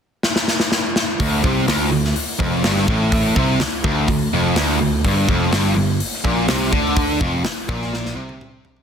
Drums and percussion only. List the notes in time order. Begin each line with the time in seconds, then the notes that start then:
0.23 snare
0.36 snare
0.48 snare
0.60 snare
0.72 snare
0.96 snare
1.20 kick, open hi-hat
1.44 kick
1.68 snare, open hi-hat
2.05 snare
2.16 open hi-hat
2.40 kick
2.64 snare, open hi-hat
2.76 snare
2.88 kick
3.12 kick, open hi-hat
3.36 kick
3.60 snare, open hi-hat
3.84 kick
4.08 kick, open hi-hat
4.56 snare, open hi-hat
5.04 kick, open hi-hat
5.29 kick
5.52 snare, open hi-hat
6.00 open hi-hat
6.25 kick
6.48 snare, open hi-hat
6.73 kick
6.96 kick, open hi-hat
7.21 kick
7.44 snare, open hi-hat
7.69 kick
7.82 snare
7.94 snare
8.05 snare
8.29 high tom
8.41 mid tom
8.65 floor tom
8.76 floor tom